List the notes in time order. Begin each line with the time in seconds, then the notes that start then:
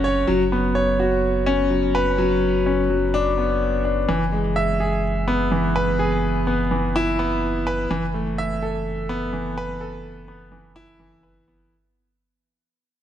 Already playing: F#1 F#3 C#4 F#4 C#5
0.04 C#5
0.27 F#1 F#3
0.52 B3
0.75 C#5
1.00 F#4
1.46 C#4
1.70 F#3
1.95 B4
2.18 F#3
2.66 C#4
2.90 F#3
3.14 D4
3.38 B3
3.85 D4
4.09 F#1 E3
4.32 G#3
4.56 E5
4.80 G#4
5.28 B3
5.52 E3
5.76 B4
5.99 G#4
6.47 B3
6.71 E3
6.96 E4
7.19 B3
7.67 B4
7.90 F#1 E3
8.14 A3
8.38 E5
8.63 A4
9.09 B3
9.33 E3
9.58 B4
9.81 A4
10.28 B3
10.52 E3
10.76 E4
11.00 E3
11.23 B4
11.48 B3